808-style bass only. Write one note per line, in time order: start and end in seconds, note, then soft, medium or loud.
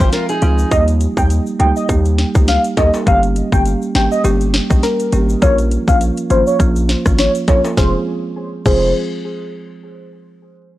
0.42 0.65 C#2 medium
0.72 1.07 D#2 loud
1.17 1.40 D#2 loud
1.60 1.72 C#2 medium
1.89 2.25 D#2 medium
2.35 2.58 C#2 medium
2.77 2.90 D#2 medium
3.07 3.42 G1 loud
3.52 3.75 G1 loud
3.95 4.08 G#1 medium
4.24 4.60 G1 loud
4.71 4.80 A#1 medium
5.13 5.35 G#1 medium
5.42 5.78 A#1 loud
5.88 6.11 A#1 loud
6.30 6.43 G#1 medium
6.60 6.95 A#1 loud
7.06 7.28 G#1 medium
7.48 7.61 A#1 medium
7.77 7.95 F1 loud
8.66 8.93 F1 loud